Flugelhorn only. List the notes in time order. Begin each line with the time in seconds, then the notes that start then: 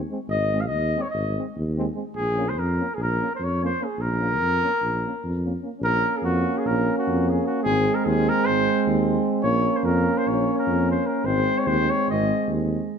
0.30 D#5
0.60 F5
0.67 D#5
1.01 C#5
1.10 D#5
2.16 G#4
2.49 C5
2.59 A#4
2.94 G#4
3.02 A#4
3.35 C5
3.44 C#5
3.65 C5
3.84 G#4
4.01 A#4
5.84 A#4
6.17 G#4
6.24 F#4
6.58 G#4
6.67 A#4
6.98 F#4
7.29 G#4
7.46 F#4
7.63 G#4
7.95 A#4
8.05 G#4
8.29 A#4
8.45 C5
9.43 C#5
9.76 C5
9.85 A#4
10.18 C5
10.27 C#5
10.59 A#4
10.91 C5
11.06 A#4
11.26 C5
11.58 C#5
11.67 C5
11.90 C#5
12.10 D#5